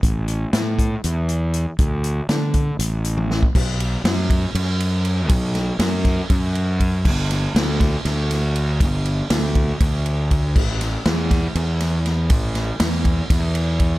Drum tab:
CC |--------------|--------------|x-------------|--------------|
RD |--------------|--------------|--x-x-x-x-x-x-|x-x-x-x-x-x-x-|
HH |x-x-x-x-x-x-x-|x-x-x-x-x-x---|--------------|--------------|
SD |----o---------|----o-------o-|----o---------|--o-o-o-------|
T1 |--------------|-----------o--|--------------|--------------|
BD |o-----o-------|o-----o------o|o-----o-------|o-----o-o---o-|

CC |x-------------|--------------|x-------------|--------------|
RD |--x-x-x-x-x-x-|x-x-x-x-x-x-x-|--x-x-x-x-x-x-|x-x-x-x-x-x-x-|
HH |--------------|--------------|--------------|--------------|
SD |--o-o-o-o-o---|----o---------|--o-o-o---o-o-|--o-o---o-----|
T1 |--------------|--------------|--------------|--------------|
BD |o-----o-------|o-----o-o---o-|o-----o-------|o-----o-o---o-|